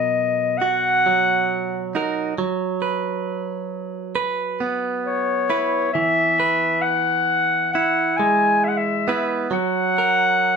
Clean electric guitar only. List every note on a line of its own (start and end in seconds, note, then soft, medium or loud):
0.00 2.33 B2 medium
0.00 1.05 F#3 medium
0.00 1.95 A#4 medium
0.62 1.94 F#4 medium
1.06 2.37 F#3 soft
1.95 2.33 D#4 soft
1.95 2.33 F#4 soft
1.95 2.34 A#4 soft
2.38 5.95 F#3 medium
2.82 4.15 B4 soft
4.15 5.49 B4 medium
4.60 9.06 B3 soft
5.50 5.89 E4 soft
5.50 5.89 B4 medium
5.95 9.46 E3 medium
6.40 9.06 B4 medium
7.75 9.07 E4 medium
8.19 9.47 G#3 soft
9.08 9.52 B3 soft
9.08 9.47 E4 medium
9.08 9.47 B4 soft
9.51 10.56 F#3 medium
9.98 10.56 A#4 medium